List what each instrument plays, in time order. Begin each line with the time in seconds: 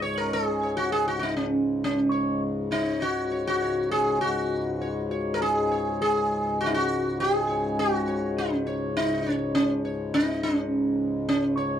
Already playing: harmonium C#2 G#2
0.02 sitar C#5
0.18 sitar A#4
0.33 sitar G#4
0.63 sitar C#5
0.77 sitar F#4
0.92 sitar G#4
1.08 sitar F#4
1.19 sitar D#4 F#4
1.37 sitar C#4
1.84 sitar C#4
2.12 sitar C#5
2.71 sitar D#4 C#5
3.01 sitar F#4 C#5
3.32 sitar C#5
3.47 sitar F#4
3.62 sitar C#5
3.91 sitar G#4 C#5
4.21 harmonium C#2 G#2, sitar F#4
4.81 sitar C#5
5.11 sitar C#5
5.34 sitar A#4
5.42 sitar G#4
5.72 sitar C#5
6.02 sitar G#4
6.61 sitar F#4
6.66 sitar D#4
6.74 sitar F#4
7.20 sitar G#4
7.49 sitar C#5
7.79 sitar F#4
8.07 sitar C#5
8.38 sitar C#4
8.67 sitar C#5
8.97 sitar D#4
9.26 sitar C#5
9.32 sitar C#4
9.55 sitar C#4
9.85 sitar C#5
10.14 sitar D#4
10.43 sitar C#4
11.29 sitar C#4
11.57 sitar C#5